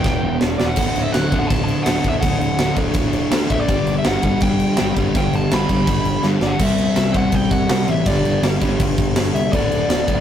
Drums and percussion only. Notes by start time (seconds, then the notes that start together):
0.04 kick, snare
0.41 snare
0.60 snare
0.76 kick, crash
0.96 crash
1.14 snare, crash
1.32 kick, crash
1.50 kick, crash
1.68 crash
1.86 snare, crash
2.04 kick, crash
2.23 kick, crash
2.41 crash
2.59 snare, crash
2.76 kick, crash
2.94 kick, crash
3.13 crash
3.31 snare, crash
3.50 kick, crash
3.69 kick, crash
3.87 crash
4.04 snare, crash
4.22 kick, crash
4.40 kick, crash
4.60 crash
4.77 snare, crash
4.96 kick, crash
5.15 kick, crash
5.33 crash
5.51 snare, crash
5.69 kick, crash
5.87 kick, crash
6.05 crash
6.23 snare
6.41 snare
6.59 kick, crash
6.78 crash
6.96 snare, crash
7.14 kick, crash
7.32 kick, crash
7.51 kick, crash
7.69 snare, crash
7.88 crash
8.06 kick, crash
8.25 crash
8.43 snare, crash
8.61 kick, crash
8.80 kick, crash
8.98 kick, crash
9.16 snare, crash
9.36 crash
9.53 kick, crash
9.72 crash
9.90 snare, crash
10.08 kick, crash